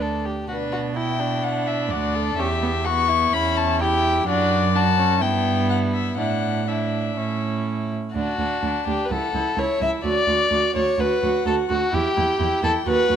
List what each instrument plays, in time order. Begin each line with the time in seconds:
Already playing: cello D2, viola D4
0.02 violin A4
0.25 violin G4
0.48 cello B2, viola D4, violin F#4 B4
0.72 violin F#4
0.96 viola E4, violin E4 G5
1.20 viola D4
1.44 violin F#5
1.67 violin E5
1.91 cello D2, violin F#4 D5
2.15 violin A4
2.38 cello E2, viola C#4, violin G4 E5
2.62 viola B3
2.85 viola B3, violin F#4 C#6
3.10 violin E4
3.33 cello E2, viola C#4, violin B5
3.57 violin A5
3.80 viola E4, violin G4 G5
4.27 cello F#2, viola D4, violin F#4 D5
4.74 viola D4, violin F#4 A5
4.98 viola C#4
5.21 cello G2, viola B3, violin E4 G5
5.70 violin F#5
5.93 violin E5
6.18 cello A2, viola D4, violin E4 F#5
6.68 viola D4, violin E4 E5
7.17 cello A2, viola C#4, violin E4
8.15 cello D2, viola D4, violin F#4 A5
8.39 cello D2, viola D4
8.63 cello D2, viola D4
8.87 cello D2, viola D4, violin G4
9.05 violin B4
9.11 cello C#2, viola E4, violin A4 F#5
9.34 cello C#2, viola E4
9.58 cello C#2, viola E4, violin C#5 E5
9.81 cello C#2, viola E4, violin E5
10.04 cello D2, viola F#4, violin D5
10.28 cello D2, viola F#4
10.52 cello D2, viola F#4
10.75 cello D2, viola F#4, violin C#5
10.99 cello D2, viola F#4, violin B4 F#5
11.23 cello D2, viola F#4
11.46 cello D2, viola F#4, violin A4
11.70 cello D2, violin F#4, viola F#4
11.93 cello E2, viola E4, violin G4 G5
12.17 cello E2, viola E4
12.40 cello E2, viola E4
12.63 cello E2, viola E4, violin A4
12.87 cello D#2, viola F#4, violin B4 F#5
13.10 cello D#2, viola F#4